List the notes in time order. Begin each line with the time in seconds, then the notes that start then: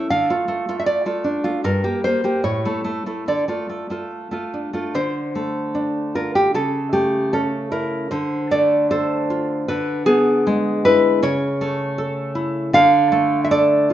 Already playing: C#4
0.10 D3 F5
0.30 A3 F4
0.48 A3
0.69 A3 F4
0.80 E5
0.86 D5
1.06 A3 F4
1.24 D4
1.44 A3 F4
1.64 G2 A#4
1.84 A#3 G4
2.04 A#3 C5
2.24 A#3 G4
2.44 A2 C#5
2.65 A3 E4
2.84 A3
3.06 A3 E4
3.28 D3 D5
3.48 A3 F4
3.70 A3
3.90 A3 F4
4.31 A3 F4
4.54 D4
4.73 A3 F4
4.94 D3 C5
5.35 A3
5.75 D4
6.15 F4 A#4
6.35 G4
6.54 C#3 A4
6.93 A3 G4
7.33 C#4 A4
7.72 E4 A#4
8.11 D3 C5
8.51 A3 D5
8.91 A4 C5
9.30 F4
9.68 D3 B4
10.06 B3 G#4
10.47 G#3
10.85 E4 B4
11.23 C#3 C#5
11.61 A3
11.98 A4
12.35 E4
12.73 D3 F5
13.12 A3
13.44 E5
13.51 A4 D5
13.90 F4